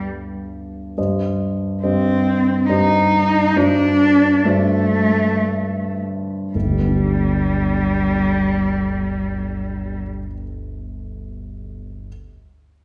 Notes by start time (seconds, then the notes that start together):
Already playing: G2 G3 B3 D4
0.98 G2 G4 C5 D#5
1.83 G2 C4 G4 C5 D#5
2.69 G2 D#4 G4 C5 D#5
3.56 G2 D4 F#4 C5 D5
4.45 G2 A3 F#4 C5 D5
6.54 G1 G3
6.63 D2
6.71 G3
6.79 B3
6.88 D4
6.95 G4